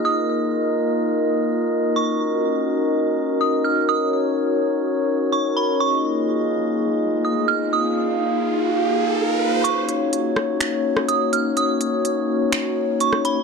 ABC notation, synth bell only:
X:1
M:4/4
L:1/8
Q:1/4=125
K:Ebm
V:1 name="Synth bell"
e'8 | d'6 e' f' | e'6 d' c' | d'6 e' f' |
e'8 | d'6 e' f' | e'6 d' c' |]